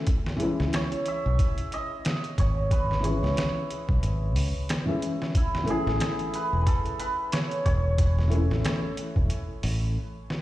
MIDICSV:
0, 0, Header, 1, 5, 480
1, 0, Start_track
1, 0, Tempo, 659341
1, 52, Time_signature, 4, 2, 24, 8
1, 7584, End_track
2, 0, Start_track
2, 0, Title_t, "Hammered dulcimer"
2, 0, Program_c, 0, 15
2, 550, Note_on_c, 0, 73, 90
2, 786, Note_on_c, 0, 76, 110
2, 1265, Note_on_c, 0, 75, 109
2, 1309, Note_off_c, 0, 76, 0
2, 1739, Note_off_c, 0, 73, 0
2, 1742, Note_on_c, 0, 73, 89
2, 1978, Note_on_c, 0, 71, 84
2, 2215, Note_off_c, 0, 73, 0
2, 2217, Note_on_c, 0, 73, 80
2, 2996, Note_off_c, 0, 75, 0
2, 3910, Note_on_c, 0, 64, 82
2, 3967, Note_off_c, 0, 71, 0
2, 4073, Note_off_c, 0, 73, 0
2, 4150, Note_on_c, 0, 68, 96
2, 4626, Note_on_c, 0, 71, 96
2, 4811, Note_off_c, 0, 71, 0
2, 4814, Note_on_c, 0, 71, 77
2, 4856, Note_on_c, 0, 69, 100
2, 4900, Note_off_c, 0, 68, 0
2, 5092, Note_off_c, 0, 71, 0
2, 5095, Note_on_c, 0, 71, 100
2, 5160, Note_off_c, 0, 71, 0
2, 5333, Note_on_c, 0, 73, 100
2, 5570, Note_off_c, 0, 73, 0
2, 5573, Note_on_c, 0, 73, 102
2, 6445, Note_off_c, 0, 64, 0
2, 6988, Note_off_c, 0, 69, 0
2, 7428, Note_off_c, 0, 73, 0
2, 7584, End_track
3, 0, Start_track
3, 0, Title_t, "Felt piano"
3, 0, Program_c, 1, 0
3, 266, Note_on_c, 1, 52, 96
3, 282, Note_on_c, 1, 56, 88
3, 297, Note_on_c, 1, 61, 83
3, 313, Note_on_c, 1, 64, 99
3, 2174, Note_off_c, 1, 52, 0
3, 2182, Note_off_c, 1, 56, 0
3, 2187, Note_on_c, 1, 52, 79
3, 2190, Note_off_c, 1, 61, 0
3, 2197, Note_off_c, 1, 64, 0
3, 2204, Note_on_c, 1, 56, 74
3, 2219, Note_on_c, 1, 61, 74
3, 2237, Note_on_c, 1, 64, 85
3, 3503, Note_off_c, 1, 52, 0
3, 3512, Note_off_c, 1, 56, 0
3, 3519, Note_off_c, 1, 61, 0
3, 3528, Note_off_c, 1, 64, 0
3, 3534, Note_on_c, 1, 52, 83
3, 3544, Note_on_c, 1, 56, 70
3, 3551, Note_on_c, 1, 61, 71
3, 3558, Note_on_c, 1, 64, 89
3, 3872, Note_off_c, 1, 52, 0
3, 3877, Note_off_c, 1, 56, 0
3, 3880, Note_off_c, 1, 61, 0
3, 3884, Note_off_c, 1, 64, 0
3, 4104, Note_on_c, 1, 52, 96
3, 4121, Note_on_c, 1, 57, 88
3, 4135, Note_on_c, 1, 61, 85
3, 4151, Note_on_c, 1, 64, 107
3, 6013, Note_off_c, 1, 52, 0
3, 6021, Note_off_c, 1, 57, 0
3, 6026, Note_on_c, 1, 52, 81
3, 6029, Note_off_c, 1, 61, 0
3, 6037, Note_off_c, 1, 64, 0
3, 6043, Note_on_c, 1, 57, 74
3, 6058, Note_on_c, 1, 61, 75
3, 6076, Note_on_c, 1, 64, 91
3, 7239, Note_off_c, 1, 52, 0
3, 7247, Note_off_c, 1, 57, 0
3, 7255, Note_off_c, 1, 61, 0
3, 7264, Note_off_c, 1, 64, 0
3, 7584, End_track
4, 0, Start_track
4, 0, Title_t, "Fingered electric bass"
4, 0, Program_c, 2, 33
4, 435, Note_on_c, 2, 37, 85
4, 523, Note_off_c, 2, 37, 0
4, 916, Note_on_c, 2, 35, 82
4, 1003, Note_off_c, 2, 35, 0
4, 1735, Note_on_c, 2, 32, 84
4, 2324, Note_off_c, 2, 32, 0
4, 2351, Note_on_c, 2, 37, 88
4, 2440, Note_off_c, 2, 37, 0
4, 2832, Note_on_c, 2, 35, 79
4, 2921, Note_off_c, 2, 35, 0
4, 2933, Note_on_c, 2, 32, 89
4, 3171, Note_off_c, 2, 32, 0
4, 3171, Note_on_c, 2, 37, 95
4, 3291, Note_off_c, 2, 37, 0
4, 4270, Note_on_c, 2, 33, 87
4, 4360, Note_off_c, 2, 33, 0
4, 4752, Note_on_c, 2, 28, 82
4, 4841, Note_off_c, 2, 28, 0
4, 5578, Note_on_c, 2, 28, 88
4, 6165, Note_off_c, 2, 28, 0
4, 6192, Note_on_c, 2, 33, 87
4, 6281, Note_off_c, 2, 33, 0
4, 6674, Note_on_c, 2, 28, 82
4, 6762, Note_off_c, 2, 28, 0
4, 7015, Note_on_c, 2, 33, 98
4, 7253, Note_off_c, 2, 33, 0
4, 7584, End_track
5, 0, Start_track
5, 0, Title_t, "Drums"
5, 48, Note_on_c, 9, 42, 87
5, 52, Note_on_c, 9, 36, 105
5, 121, Note_off_c, 9, 42, 0
5, 124, Note_off_c, 9, 36, 0
5, 192, Note_on_c, 9, 38, 52
5, 265, Note_off_c, 9, 38, 0
5, 290, Note_on_c, 9, 42, 62
5, 363, Note_off_c, 9, 42, 0
5, 436, Note_on_c, 9, 38, 53
5, 509, Note_off_c, 9, 38, 0
5, 531, Note_on_c, 9, 42, 84
5, 538, Note_on_c, 9, 38, 112
5, 604, Note_off_c, 9, 42, 0
5, 611, Note_off_c, 9, 38, 0
5, 669, Note_on_c, 9, 42, 41
5, 742, Note_off_c, 9, 42, 0
5, 769, Note_on_c, 9, 42, 65
5, 841, Note_off_c, 9, 42, 0
5, 1012, Note_on_c, 9, 36, 101
5, 1012, Note_on_c, 9, 42, 85
5, 1085, Note_off_c, 9, 36, 0
5, 1085, Note_off_c, 9, 42, 0
5, 1148, Note_on_c, 9, 42, 45
5, 1221, Note_off_c, 9, 42, 0
5, 1253, Note_on_c, 9, 42, 65
5, 1326, Note_off_c, 9, 42, 0
5, 1492, Note_on_c, 9, 42, 86
5, 1499, Note_on_c, 9, 38, 110
5, 1564, Note_off_c, 9, 42, 0
5, 1572, Note_off_c, 9, 38, 0
5, 1631, Note_on_c, 9, 42, 39
5, 1704, Note_off_c, 9, 42, 0
5, 1733, Note_on_c, 9, 36, 88
5, 1734, Note_on_c, 9, 42, 59
5, 1805, Note_off_c, 9, 36, 0
5, 1807, Note_off_c, 9, 42, 0
5, 1972, Note_on_c, 9, 36, 106
5, 1974, Note_on_c, 9, 42, 84
5, 2045, Note_off_c, 9, 36, 0
5, 2047, Note_off_c, 9, 42, 0
5, 2118, Note_on_c, 9, 38, 36
5, 2191, Note_off_c, 9, 38, 0
5, 2213, Note_on_c, 9, 42, 67
5, 2286, Note_off_c, 9, 42, 0
5, 2360, Note_on_c, 9, 38, 42
5, 2432, Note_off_c, 9, 38, 0
5, 2455, Note_on_c, 9, 42, 81
5, 2462, Note_on_c, 9, 38, 114
5, 2528, Note_off_c, 9, 42, 0
5, 2535, Note_off_c, 9, 38, 0
5, 2697, Note_on_c, 9, 42, 62
5, 2770, Note_off_c, 9, 42, 0
5, 2830, Note_on_c, 9, 36, 93
5, 2903, Note_off_c, 9, 36, 0
5, 2934, Note_on_c, 9, 42, 81
5, 3006, Note_off_c, 9, 42, 0
5, 3174, Note_on_c, 9, 46, 75
5, 3247, Note_off_c, 9, 46, 0
5, 3416, Note_on_c, 9, 42, 81
5, 3424, Note_on_c, 9, 38, 107
5, 3489, Note_off_c, 9, 42, 0
5, 3496, Note_off_c, 9, 38, 0
5, 3657, Note_on_c, 9, 42, 63
5, 3730, Note_off_c, 9, 42, 0
5, 3798, Note_on_c, 9, 38, 51
5, 3871, Note_off_c, 9, 38, 0
5, 3893, Note_on_c, 9, 36, 116
5, 3894, Note_on_c, 9, 42, 89
5, 3966, Note_off_c, 9, 36, 0
5, 3967, Note_off_c, 9, 42, 0
5, 4039, Note_on_c, 9, 38, 51
5, 4111, Note_off_c, 9, 38, 0
5, 4131, Note_on_c, 9, 42, 60
5, 4204, Note_off_c, 9, 42, 0
5, 4275, Note_on_c, 9, 38, 52
5, 4348, Note_off_c, 9, 38, 0
5, 4371, Note_on_c, 9, 42, 82
5, 4378, Note_on_c, 9, 38, 105
5, 4443, Note_off_c, 9, 42, 0
5, 4451, Note_off_c, 9, 38, 0
5, 4508, Note_on_c, 9, 42, 44
5, 4580, Note_off_c, 9, 42, 0
5, 4613, Note_on_c, 9, 42, 68
5, 4686, Note_off_c, 9, 42, 0
5, 4853, Note_on_c, 9, 36, 106
5, 4854, Note_on_c, 9, 42, 84
5, 4926, Note_off_c, 9, 36, 0
5, 4927, Note_off_c, 9, 42, 0
5, 4991, Note_on_c, 9, 42, 44
5, 5063, Note_off_c, 9, 42, 0
5, 5093, Note_on_c, 9, 42, 68
5, 5165, Note_off_c, 9, 42, 0
5, 5331, Note_on_c, 9, 42, 89
5, 5339, Note_on_c, 9, 38, 113
5, 5404, Note_off_c, 9, 42, 0
5, 5411, Note_off_c, 9, 38, 0
5, 5470, Note_on_c, 9, 42, 41
5, 5543, Note_off_c, 9, 42, 0
5, 5573, Note_on_c, 9, 36, 92
5, 5575, Note_on_c, 9, 42, 65
5, 5646, Note_off_c, 9, 36, 0
5, 5647, Note_off_c, 9, 42, 0
5, 5812, Note_on_c, 9, 42, 84
5, 5813, Note_on_c, 9, 36, 105
5, 5885, Note_off_c, 9, 42, 0
5, 5886, Note_off_c, 9, 36, 0
5, 5959, Note_on_c, 9, 38, 36
5, 6032, Note_off_c, 9, 38, 0
5, 6054, Note_on_c, 9, 42, 64
5, 6126, Note_off_c, 9, 42, 0
5, 6198, Note_on_c, 9, 38, 45
5, 6270, Note_off_c, 9, 38, 0
5, 6294, Note_on_c, 9, 42, 86
5, 6301, Note_on_c, 9, 38, 114
5, 6367, Note_off_c, 9, 42, 0
5, 6374, Note_off_c, 9, 38, 0
5, 6533, Note_on_c, 9, 42, 70
5, 6606, Note_off_c, 9, 42, 0
5, 6669, Note_on_c, 9, 36, 90
5, 6741, Note_off_c, 9, 36, 0
5, 6770, Note_on_c, 9, 42, 83
5, 6843, Note_off_c, 9, 42, 0
5, 7012, Note_on_c, 9, 46, 75
5, 7085, Note_off_c, 9, 46, 0
5, 7500, Note_on_c, 9, 38, 56
5, 7572, Note_off_c, 9, 38, 0
5, 7584, End_track
0, 0, End_of_file